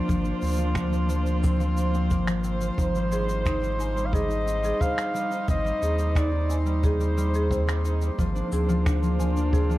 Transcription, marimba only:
3.12 3.28 G#4 medium
3.46 3.62 D#4 medium
3.80 3.96 G#5 medium
4.14 4.30 G#4 loud
4.65 4.80 G#4 medium
4.82 4.98 C5 medium
5.83 5.98 G#4 medium
6.17 6.32 D#4 medium
6.51 6.66 G#5 medium
6.84 7.00 G#4 loud
7.35 7.50 G#4 loud
7.51 7.67 C5 medium
8.53 8.68 G#4 medium
8.86 9.01 D4 medium
9.19 9.35 G#5 medium
9.53 9.69 G#4 loud

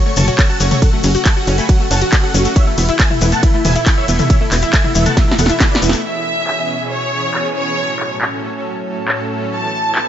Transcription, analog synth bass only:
0.17 0.30 F#1 loud
0.60 0.74 F#1 medium
1.04 1.17 F#1 loud
1.47 1.61 F#1 loud
1.91 2.04 F#1 loud
2.34 2.47 F#1 medium
2.78 2.91 E1 loud
3.21 3.34 E1 loud
3.65 3.78 E1 loud
4.08 4.21 E1 medium
4.52 4.65 E1 loud
4.95 5.08 E1 loud
5.39 5.52 E1 loud
5.82 5.95 E1 loud

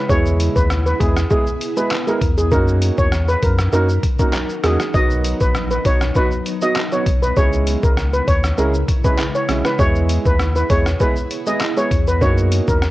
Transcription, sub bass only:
0.09 0.49 E2 loud
0.56 0.94 D#2 medium
1.00 1.26 E2 loud
2.21 2.53 E2 medium
2.52 2.91 F#2 loud
2.98 3.36 E2 medium
3.43 3.69 F#2 loud
3.73 3.99 F#2 loud
4.64 4.78 E2 loud
4.94 5.34 B1 loud
5.41 5.79 A#1 medium
5.85 6.11 B1 loud
7.06 7.32 B1 medium
7.37 7.76 C#2 loud
7.83 8.21 C#2 medium
8.28 8.54 D#2 loud
8.58 8.84 C#2 loud
9.49 9.63 B1 medium
9.79 10.19 E2 loud
10.26 10.64 D#2 medium
10.70 10.96 E2 loud
11.91 12.23 E2 medium
12.21 12.61 F#2 loud
12.68 12.91 E2 medium

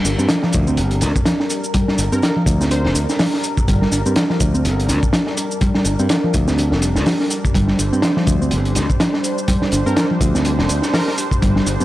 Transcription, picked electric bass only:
0.06 0.12 D4 medium
0.19 0.28 C4 medium
0.29 0.36 F3 medium
0.44 0.66 F3 medium
0.68 1.14 C4 medium
1.26 1.32 F3 medium
1.75 1.85 G3 medium
1.88 1.96 G3 medium
1.99 2.05 D4 medium
2.12 2.22 C4 loud
2.23 2.29 F3 medium
2.36 2.59 F3 medium
2.60 3.07 C4 medium
3.20 3.26 F3 medium
3.68 3.78 G3 medium
3.82 3.90 G3 medium
3.92 3.98 D4 medium
4.06 4.15 C4 loud
4.16 4.23 F3 medium
4.30 4.53 F3 medium
4.54 5.01 C4 medium
5.13 5.19 F3 medium
5.61 5.72 G3 medium
5.75 5.83 G3 medium
5.85 5.92 D4 medium
6.00 6.09 C4 medium
6.10 6.16 F3 medium
6.24 6.47 F3 medium
6.48 6.95 C4 medium
7.06 7.13 F3 medium
7.55 7.66 G3 medium
7.69 7.77 G3 medium
7.79 7.85 D4 medium
7.93 8.02 C4 loud
8.03 8.10 F3 medium
8.17 8.40 F3 medium
8.42 8.88 C4 medium
9.00 9.07 F3 medium
9.48 9.59 G3 medium
9.62 9.70 G3 medium
9.73 9.79 D4 medium
9.86 9.96 C4 loud
9.97 10.03 F3 medium
10.11 10.34 F3 medium
10.35 10.82 C4 medium
10.94 11.00 F3 medium
11.42 11.53 G3 medium
11.56 11.64 G3 medium
11.67 11.73 D4 medium
11.81 11.85 C4 loud

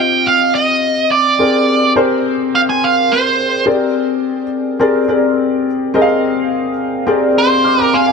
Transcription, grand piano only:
0.00 1.39 C4 medium
0.00 1.41 F4 medium
0.00 1.39 G4 medium
0.00 1.41 D#5 medium
1.39 1.77 C4 medium
1.39 1.77 G4 medium
1.39 1.78 G#4 medium
1.39 1.78 A#4 medium
1.39 1.78 D5 medium
1.96 2.72 C4 medium
1.96 2.72 G4 medium
1.96 2.72 G#4 medium
1.96 2.73 A#4 medium
1.96 2.73 C5 loud
3.66 4.42 C4 medium
3.66 4.42 G4 medium
3.66 4.43 G#4 medium
3.66 4.43 A#4 medium
3.66 4.43 D5 medium
4.80 4.99 C4 loud
4.80 4.99 G4 medium
4.80 4.99 G#4 medium
4.80 4.99 A#4 medium
4.80 5.00 D5 loud
5.08 5.65 C4 medium
5.08 5.66 G4 medium
5.08 5.66 G#4 medium
5.08 5.66 A#4 medium
5.08 5.66 D5 loud
5.94 6.70 C4 loud
5.94 6.70 G4 medium
5.94 6.70 G#4 medium
5.94 6.71 A#4 medium
5.94 6.01 D#5 medium
6.02 6.74 F5 loud
7.07 7.26 C4 loud
7.07 7.26 G4 medium
7.07 7.26 G#4 medium
7.07 7.27 A#4 medium
7.07 7.27 D5 loud
7.64 7.78 D6 medium
7.64 7.78 F6 medium
7.79 7.93 A#5 medium
7.79 7.92 D6 medium
7.93 8.05 G#5 medium
7.93 8.07 C6 medium
8.07 8.12 F5 soft
8.07 8.12 G#5 medium

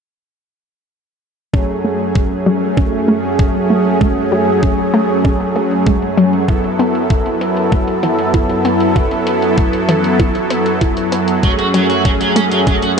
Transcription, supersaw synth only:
1.53 11.39 F#2 medium
1.53 6.44 F#3 medium
1.53 6.44 A3 medium
1.53 6.44 C#4 medium
1.53 6.44 G#4 medium
6.48 13.00 F#3 medium
6.48 11.39 B3 medium
6.48 11.39 E4 medium
6.48 11.39 A4 medium
11.43 13.00 F#2 medium
11.43 13.00 A3 medium
11.43 13.00 C#4 medium
11.43 13.00 G#4 medium

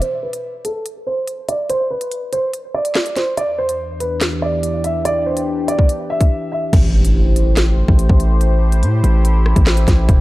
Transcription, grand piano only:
0.02 0.18 C5 loud
0.23 0.62 B4 medium
0.65 0.80 A4 medium
1.07 1.46 C5 medium
1.49 1.64 D5 medium
1.70 1.85 C5 loud
1.90 2.30 B4 medium
2.33 2.48 C5 medium
2.74 3.14 D5 medium
3.16 3.32 C5 medium
3.37 3.53 D5 medium
3.58 3.98 C5 medium
4.00 4.16 B4 medium
4.42 4.82 D5 medium
4.84 5.00 E5 medium
5.05 5.21 D5 medium
5.26 5.66 C5 medium
5.68 5.84 D5 medium
6.10 6.49 E5 medium
6.52 6.68 E5 medium

